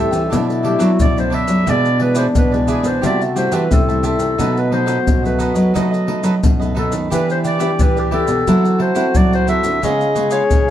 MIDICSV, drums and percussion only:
0, 0, Header, 1, 3, 480
1, 0, Start_track
1, 0, Key_signature, 1, "minor"
1, 0, Tempo, 679502
1, 1186, Time_signature, 4, 2, 24, 8
1, 7560, End_track
2, 0, Start_track
2, 0, Title_t, "Pandeiro"
2, 91, Note_on_c, 9, 54, 58
2, 161, Note_off_c, 9, 54, 0
2, 230, Note_on_c, 9, 54, 86
2, 301, Note_off_c, 9, 54, 0
2, 354, Note_on_c, 9, 54, 35
2, 425, Note_off_c, 9, 54, 0
2, 456, Note_on_c, 9, 54, 59
2, 526, Note_off_c, 9, 54, 0
2, 566, Note_on_c, 9, 54, 67
2, 636, Note_off_c, 9, 54, 0
2, 703, Note_on_c, 9, 54, 76
2, 774, Note_off_c, 9, 54, 0
2, 833, Note_on_c, 9, 54, 34
2, 903, Note_off_c, 9, 54, 0
2, 935, Note_on_c, 9, 54, 55
2, 1005, Note_off_c, 9, 54, 0
2, 1044, Note_on_c, 9, 54, 67
2, 1114, Note_off_c, 9, 54, 0
2, 1180, Note_on_c, 9, 54, 84
2, 1251, Note_off_c, 9, 54, 0
2, 1309, Note_on_c, 9, 54, 29
2, 1379, Note_off_c, 9, 54, 0
2, 1410, Note_on_c, 9, 54, 56
2, 1481, Note_off_c, 9, 54, 0
2, 1519, Note_on_c, 9, 54, 71
2, 1590, Note_off_c, 9, 54, 0
2, 1662, Note_on_c, 9, 54, 77
2, 1732, Note_off_c, 9, 54, 0
2, 1793, Note_on_c, 9, 54, 32
2, 1864, Note_off_c, 9, 54, 0
2, 1893, Note_on_c, 9, 54, 55
2, 1964, Note_off_c, 9, 54, 0
2, 2007, Note_on_c, 9, 54, 62
2, 2078, Note_off_c, 9, 54, 0
2, 2143, Note_on_c, 9, 54, 86
2, 2214, Note_off_c, 9, 54, 0
2, 2272, Note_on_c, 9, 54, 32
2, 2342, Note_off_c, 9, 54, 0
2, 2376, Note_on_c, 9, 54, 58
2, 2447, Note_off_c, 9, 54, 0
2, 2485, Note_on_c, 9, 54, 68
2, 2556, Note_off_c, 9, 54, 0
2, 2624, Note_on_c, 9, 54, 72
2, 2695, Note_off_c, 9, 54, 0
2, 2751, Note_on_c, 9, 54, 33
2, 2822, Note_off_c, 9, 54, 0
2, 2851, Note_on_c, 9, 54, 59
2, 2922, Note_off_c, 9, 54, 0
2, 2963, Note_on_c, 9, 54, 63
2, 3034, Note_off_c, 9, 54, 0
2, 3104, Note_on_c, 9, 54, 79
2, 3174, Note_off_c, 9, 54, 0
2, 3230, Note_on_c, 9, 54, 30
2, 3301, Note_off_c, 9, 54, 0
2, 3336, Note_on_c, 9, 54, 55
2, 3406, Note_off_c, 9, 54, 0
2, 3444, Note_on_c, 9, 54, 70
2, 3515, Note_off_c, 9, 54, 0
2, 3584, Note_on_c, 9, 54, 72
2, 3655, Note_off_c, 9, 54, 0
2, 3712, Note_on_c, 9, 54, 32
2, 3782, Note_off_c, 9, 54, 0
2, 3812, Note_on_c, 9, 54, 54
2, 3883, Note_off_c, 9, 54, 0
2, 3924, Note_on_c, 9, 54, 58
2, 3995, Note_off_c, 9, 54, 0
2, 4066, Note_on_c, 9, 54, 81
2, 4137, Note_off_c, 9, 54, 0
2, 4195, Note_on_c, 9, 54, 34
2, 4266, Note_off_c, 9, 54, 0
2, 4295, Note_on_c, 9, 54, 60
2, 4366, Note_off_c, 9, 54, 0
2, 4405, Note_on_c, 9, 54, 66
2, 4476, Note_off_c, 9, 54, 0
2, 4545, Note_on_c, 9, 54, 77
2, 4616, Note_off_c, 9, 54, 0
2, 4676, Note_on_c, 9, 54, 33
2, 4746, Note_off_c, 9, 54, 0
2, 4780, Note_on_c, 9, 54, 57
2, 4850, Note_off_c, 9, 54, 0
2, 4888, Note_on_c, 9, 54, 60
2, 4959, Note_off_c, 9, 54, 0
2, 5029, Note_on_c, 9, 54, 83
2, 5100, Note_off_c, 9, 54, 0
2, 5155, Note_on_c, 9, 54, 30
2, 5225, Note_off_c, 9, 54, 0
2, 5260, Note_on_c, 9, 54, 55
2, 5330, Note_off_c, 9, 54, 0
2, 5370, Note_on_c, 9, 54, 70
2, 5441, Note_off_c, 9, 54, 0
2, 5505, Note_on_c, 9, 54, 75
2, 5575, Note_off_c, 9, 54, 0
2, 5630, Note_on_c, 9, 54, 31
2, 5701, Note_off_c, 9, 54, 0
2, 5736, Note_on_c, 9, 54, 60
2, 5807, Note_off_c, 9, 54, 0
2, 5846, Note_on_c, 9, 54, 56
2, 5917, Note_off_c, 9, 54, 0
2, 5986, Note_on_c, 9, 54, 83
2, 6057, Note_off_c, 9, 54, 0
2, 6112, Note_on_c, 9, 54, 35
2, 6183, Note_off_c, 9, 54, 0
2, 6214, Note_on_c, 9, 54, 56
2, 6285, Note_off_c, 9, 54, 0
2, 6326, Note_on_c, 9, 54, 65
2, 6397, Note_off_c, 9, 54, 0
2, 6461, Note_on_c, 9, 54, 80
2, 6532, Note_off_c, 9, 54, 0
2, 6591, Note_on_c, 9, 54, 36
2, 6662, Note_off_c, 9, 54, 0
2, 6695, Note_on_c, 9, 54, 52
2, 6766, Note_off_c, 9, 54, 0
2, 6808, Note_on_c, 9, 54, 67
2, 6878, Note_off_c, 9, 54, 0
2, 6945, Note_on_c, 9, 54, 84
2, 7016, Note_off_c, 9, 54, 0
2, 7070, Note_on_c, 9, 54, 29
2, 7141, Note_off_c, 9, 54, 0
2, 7175, Note_on_c, 9, 54, 57
2, 7246, Note_off_c, 9, 54, 0
2, 7281, Note_on_c, 9, 54, 66
2, 7352, Note_off_c, 9, 54, 0
2, 7421, Note_on_c, 9, 54, 71
2, 7492, Note_off_c, 9, 54, 0
2, 7560, End_track
3, 0, Start_track
3, 0, Title_t, "Drums"
3, 91, Note_on_c, 9, 82, 70
3, 161, Note_off_c, 9, 82, 0
3, 230, Note_on_c, 9, 82, 89
3, 230, Note_on_c, 9, 87, 56
3, 301, Note_off_c, 9, 82, 0
3, 301, Note_off_c, 9, 87, 0
3, 354, Note_on_c, 9, 82, 33
3, 425, Note_off_c, 9, 82, 0
3, 566, Note_on_c, 9, 82, 74
3, 636, Note_off_c, 9, 82, 0
3, 703, Note_on_c, 9, 82, 75
3, 703, Note_on_c, 9, 87, 85
3, 774, Note_off_c, 9, 82, 0
3, 774, Note_off_c, 9, 87, 0
3, 833, Note_on_c, 9, 82, 35
3, 903, Note_off_c, 9, 82, 0
3, 1044, Note_on_c, 9, 82, 78
3, 1114, Note_off_c, 9, 82, 0
3, 1180, Note_on_c, 9, 82, 75
3, 1180, Note_on_c, 9, 87, 59
3, 1251, Note_off_c, 9, 82, 0
3, 1251, Note_off_c, 9, 87, 0
3, 1309, Note_on_c, 9, 82, 33
3, 1379, Note_off_c, 9, 82, 0
3, 1519, Note_on_c, 9, 82, 87
3, 1590, Note_off_c, 9, 82, 0
3, 1662, Note_on_c, 9, 82, 74
3, 1662, Note_on_c, 9, 87, 90
3, 1732, Note_off_c, 9, 82, 0
3, 1732, Note_off_c, 9, 87, 0
3, 1793, Note_on_c, 9, 82, 32
3, 1864, Note_off_c, 9, 82, 0
3, 1893, Note_on_c, 9, 82, 67
3, 1964, Note_off_c, 9, 82, 0
3, 2007, Note_on_c, 9, 82, 70
3, 2078, Note_off_c, 9, 82, 0
3, 2143, Note_on_c, 9, 82, 85
3, 2143, Note_on_c, 9, 87, 61
3, 2214, Note_off_c, 9, 82, 0
3, 2214, Note_off_c, 9, 87, 0
3, 2272, Note_on_c, 9, 82, 33
3, 2342, Note_off_c, 9, 82, 0
3, 2376, Note_on_c, 9, 82, 69
3, 2447, Note_off_c, 9, 82, 0
3, 2485, Note_on_c, 9, 82, 72
3, 2556, Note_off_c, 9, 82, 0
3, 2624, Note_on_c, 9, 82, 72
3, 2624, Note_on_c, 9, 87, 94
3, 2695, Note_off_c, 9, 82, 0
3, 2695, Note_off_c, 9, 87, 0
3, 2751, Note_on_c, 9, 82, 32
3, 2822, Note_off_c, 9, 82, 0
3, 2851, Note_on_c, 9, 82, 67
3, 2922, Note_off_c, 9, 82, 0
3, 2963, Note_on_c, 9, 82, 76
3, 3034, Note_off_c, 9, 82, 0
3, 3104, Note_on_c, 9, 82, 86
3, 3104, Note_on_c, 9, 87, 62
3, 3174, Note_off_c, 9, 82, 0
3, 3174, Note_off_c, 9, 87, 0
3, 3230, Note_on_c, 9, 82, 32
3, 3301, Note_off_c, 9, 82, 0
3, 3444, Note_on_c, 9, 82, 85
3, 3515, Note_off_c, 9, 82, 0
3, 3584, Note_on_c, 9, 82, 68
3, 3584, Note_on_c, 9, 87, 92
3, 3655, Note_off_c, 9, 82, 0
3, 3655, Note_off_c, 9, 87, 0
3, 3712, Note_on_c, 9, 82, 31
3, 3782, Note_off_c, 9, 82, 0
3, 3812, Note_on_c, 9, 82, 63
3, 3883, Note_off_c, 9, 82, 0
3, 3924, Note_on_c, 9, 82, 74
3, 3995, Note_off_c, 9, 82, 0
3, 4066, Note_on_c, 9, 82, 82
3, 4066, Note_on_c, 9, 87, 62
3, 4137, Note_off_c, 9, 82, 0
3, 4137, Note_off_c, 9, 87, 0
3, 4195, Note_on_c, 9, 82, 37
3, 4266, Note_off_c, 9, 82, 0
3, 4405, Note_on_c, 9, 82, 77
3, 4476, Note_off_c, 9, 82, 0
3, 4545, Note_on_c, 9, 82, 76
3, 4545, Note_on_c, 9, 87, 89
3, 4616, Note_off_c, 9, 82, 0
3, 4616, Note_off_c, 9, 87, 0
3, 4676, Note_on_c, 9, 82, 31
3, 4746, Note_off_c, 9, 82, 0
3, 4888, Note_on_c, 9, 82, 83
3, 4959, Note_off_c, 9, 82, 0
3, 5029, Note_on_c, 9, 82, 85
3, 5029, Note_on_c, 9, 87, 58
3, 5100, Note_off_c, 9, 82, 0
3, 5100, Note_off_c, 9, 87, 0
3, 5155, Note_on_c, 9, 82, 32
3, 5225, Note_off_c, 9, 82, 0
3, 5260, Note_on_c, 9, 82, 64
3, 5330, Note_off_c, 9, 82, 0
3, 5370, Note_on_c, 9, 82, 81
3, 5441, Note_off_c, 9, 82, 0
3, 5505, Note_on_c, 9, 82, 78
3, 5505, Note_on_c, 9, 87, 88
3, 5575, Note_off_c, 9, 82, 0
3, 5575, Note_off_c, 9, 87, 0
3, 5630, Note_on_c, 9, 82, 31
3, 5701, Note_off_c, 9, 82, 0
3, 5846, Note_on_c, 9, 82, 75
3, 5917, Note_off_c, 9, 82, 0
3, 5986, Note_on_c, 9, 82, 84
3, 5986, Note_on_c, 9, 87, 64
3, 6057, Note_off_c, 9, 82, 0
3, 6057, Note_off_c, 9, 87, 0
3, 6112, Note_on_c, 9, 82, 35
3, 6183, Note_off_c, 9, 82, 0
3, 6326, Note_on_c, 9, 82, 77
3, 6397, Note_off_c, 9, 82, 0
3, 6461, Note_on_c, 9, 82, 76
3, 6461, Note_on_c, 9, 87, 94
3, 6532, Note_off_c, 9, 82, 0
3, 6532, Note_off_c, 9, 87, 0
3, 6591, Note_on_c, 9, 82, 35
3, 6662, Note_off_c, 9, 82, 0
3, 6695, Note_on_c, 9, 82, 67
3, 6766, Note_off_c, 9, 82, 0
3, 6808, Note_on_c, 9, 82, 81
3, 6878, Note_off_c, 9, 82, 0
3, 6945, Note_on_c, 9, 82, 81
3, 6945, Note_on_c, 9, 87, 57
3, 7016, Note_off_c, 9, 82, 0
3, 7016, Note_off_c, 9, 87, 0
3, 7070, Note_on_c, 9, 82, 33
3, 7141, Note_off_c, 9, 82, 0
3, 7175, Note_on_c, 9, 82, 65
3, 7246, Note_off_c, 9, 82, 0
3, 7281, Note_on_c, 9, 82, 77
3, 7352, Note_off_c, 9, 82, 0
3, 7421, Note_on_c, 9, 82, 78
3, 7421, Note_on_c, 9, 87, 90
3, 7492, Note_off_c, 9, 82, 0
3, 7492, Note_off_c, 9, 87, 0
3, 7560, End_track
0, 0, End_of_file